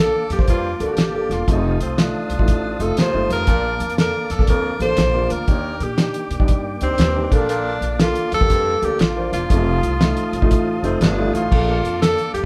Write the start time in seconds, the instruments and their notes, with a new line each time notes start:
Already playing: upright piano A#3 D4 A4, tonewheel organ A#3 F5 A5 D6
0.00 tenor saxophone A4
0.30 upright bass F2, tenor saxophone G4, snare, closed hi-hat
0.39 upright bass F2, upright piano A#3 D4 C5, kick, snare
0.47 baritone saxophone G2, tenor saxophone F4, kick, closed hi-hat
0.80 upright bass D2, upright piano A#3 D4 A4, closed hi-hat
0.86 tenor saxophone F#4
0.93 upright bass A1, tenor saxophone G4, closed hi-hat
0.98 snare
1.14 upright piano A#3 D4 A4
1.29 upright bass E1, tenor saxophone F4, snare, closed hi-hat
1.47 upright bass F1, baritone saxophone F2, upright piano A3 D#4 F4, tenor saxophone D#4, tonewheel organ C5 D#6, kick, closed hi-hat
1.81 tenor saxophone C4, closed hi-hat
1.97 upright piano A3 D#4 F4, tenor saxophone D4, snare, closed hi-hat
2.29 upright bass C2, closed hi-hat
2.39 upright bass A1, upright piano A3 D#4 F4, kick
2.48 kick, closed hi-hat
2.79 upright bass F1, upright piano A3 D#4 F4, tenor saxophone A4, closed hi-hat
2.97 baritone saxophone D#2, tenor saxophone C5, muted upright bass stroke, snare, closed hi-hat
3.14 upright bass G1, upright piano A3 D#4 F4
3.29 upright bass F2, baritone saxophone G2, tenor saxophone A#4, snare, closed hi-hat
3.46 upright bass A#1, baritone saxophone A#2, tonewheel organ A#3 F5 D6, upright piano A#3 D4 A5, kick, closed hi-hat
3.80 upright bass F2, closed hi-hat
3.90 closed hi-hat
3.98 upright piano A#3 D4 A4, tenor saxophone A#4, snare, closed hi-hat
4.30 upright bass F2, tenor saxophone A4, snare, closed hi-hat
4.39 upright bass D2, upright piano A#3 D4 A4, kick, snare
4.47 baritone saxophone F2, tenor saxophone A#4, kick, closed hi-hat
4.80 upright bass A1, upright piano A#3 D4 A4, tenor saxophone C5, closed hi-hat
4.97 upright bass A#1, snare, closed hi-hat
5.14 upright piano A#3 D4 F4
5.30 upright bass D2, tenor saxophone A#4, closed hi-hat
5.48 baritone saxophone D#2, upright bass D#2, upright piano D4 D#4 G4, tonewheel organ D5 G5, kick, closed hi-hat
5.80 upright bass A#2, tenor saxophone G4, closed hi-hat
5.98 upright piano D4 D#4 G4, snare, closed hi-hat
6.14 closed hi-hat
6.31 upright bass A#2, closed hi-hat
6.40 upright bass G2, upright piano D4 D#4 G4, kick
6.48 kick, closed hi-hat
6.81 upright bass D2, tenor saxophone C4, upright piano D4 D#4 G4, closed hi-hat
6.98 upright bass D#2, baritone saxophone G2, snare, closed hi-hat
7.15 upright piano D4 D#4 G4
7.31 upright bass A#1, baritone saxophone A#2, upright piano A#3 D4 A4, tenor saxophone D4, tonewheel organ F5 A5, kick, closed hi-hat
7.49 baritone saxophone A#2, closed hi-hat
7.81 upright bass A#1, closed hi-hat
7.99 upright piano A#3 D4 A4, tenor saxophone F4, snare, closed hi-hat
8.15 closed hi-hat
8.32 upright bass F2, tenor saxophone A4, snare, closed hi-hat
8.41 upright bass F2, upright piano A#3 D4 G4, kick, snare
8.50 baritone saxophone G2, kick, closed hi-hat
8.82 upright bass D2, upright piano A#3 D4 A4, tenor saxophone G4, closed hi-hat
8.99 upright bass A1, tenor saxophone F4, snare, closed hi-hat
9.16 upright piano A#3 D4 C5
9.32 upright bass E1, tenor saxophone F4, snare, closed hi-hat
9.49 upright bass F1, baritone saxophone F2, upright piano A3 D#4 F4, tonewheel organ C5 A5 D#6, kick, closed hi-hat
9.83 upright bass C2, closed hi-hat
10.01 upright piano A3 D#4 F4, snare, closed hi-hat
10.17 closed hi-hat
10.33 upright bass C2, closed hi-hat
10.42 upright bass A1, upright piano A3 D#4 F4, kick
10.51 kick, closed hi-hat
10.83 upright bass F1, upright piano A3 D#4 F4, tenor saxophone C4, closed hi-hat
11.01 upright bass G1, baritone saxophone G2, tenor saxophone D4, snare, closed hi-hat
11.18 upright piano A3 D#4 F4
11.33 upright bass A1, baritone saxophone A2, tenor saxophone F4, closed hi-hat
11.51 upright bass A#1, baritone saxophone A#2, tonewheel organ A#3 F5 A5 D6, upright piano A#3 D4 A4, kick, crash
11.83 upright bass F2, closed hi-hat
12.02 upright piano A#3 D4 A4, tenor saxophone A4, snare, closed hi-hat
12.18 closed hi-hat
12.34 upright bass F2, tenor saxophone G4, closed hi-hat